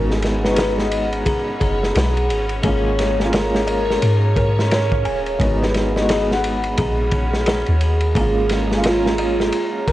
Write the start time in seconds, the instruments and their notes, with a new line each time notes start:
Already playing: 808-style bass G#1, felt piano G#3 B3 D#4 F#4, synth texture C#4 C#5, analog synth pad G#4 F#5 B5
0.09 soft synth lead G#4, snare
0.22 snare, ride
0.40 felt piano G#3 B3, soft synth lead B4
0.45 felt piano D#4, snare
0.50 felt piano F#4
0.56 music box G#4, snare, ride
0.78 soft synth lead D#5, snare
0.92 ride
1.13 ride
1.26 music box G#4, kick, ride
1.60 808-style bass F#1, music box G#4, kick, ride
1.83 snare
1.95 808-style bass B1, music box G#4, snare, ride
2.17 ride
2.30 808-style bass G#1, ride
2.49 ride
2.62 808-style bass G#1, felt piano G#3 A#3 C#4, music box G#4, analog synth pad C#5 A#5, soft synth lead C#5, kick, ride
2.67 felt piano F4
2.99 snare, ride
3.14 felt piano G#3 A#3
3.20 felt piano C#4, snare
3.24 felt piano F4
3.33 soft synth lead A#4, snare, ride
3.55 snare
3.67 soft synth lead A#4, music box D#5, ride
3.91 snare
4.02 808-style bass G#2, ride
4.36 music box A#4, kick, ride
4.59 snare
4.71 soft synth lead C#5, snare, ride
4.92 kick
5.05 808-style bass D#1, music box G#5, ride
5.26 soft synth lead C#5, ride
5.39 808-style bass G#1, felt piano G#3 B3 D#4, analog synth pad F#5 B5, kick, ride
5.44 felt piano F#4
5.61 soft synth lead B4, snare
5.74 snare, ride
5.92 felt piano G#3 B3
5.96 felt piano D#4, soft synth lead D#5, snare
6.01 felt piano F#4
6.09 music box G#4, snare, ride
6.31 soft synth lead F#5, snare
6.44 ride
6.63 ride
6.77 808-style bass A#1, music box G#4, kick, ride
7.11 kick, ride
7.33 snare
7.46 music box G#4, snare, ride
7.66 808-style bass D#2, ride
7.81 ride
8.00 ride
8.15 808-style bass G#1, felt piano G#3 A#3 C#4, music box G#4, soft synth lead G#4, analog synth pad C#5 A#5, kick, ride
8.20 felt piano F4
8.49 snare, ride
8.67 felt piano G#3 A#3
8.71 felt piano C#4, snare
8.77 felt piano F4
8.83 soft synth lead F4, snare, ride
9.06 snare
9.18 soft synth lead F4, music box D#5, ride
9.40 snare
9.52 ride
9.87 808-style bass G#1, music box A#4, kick, ride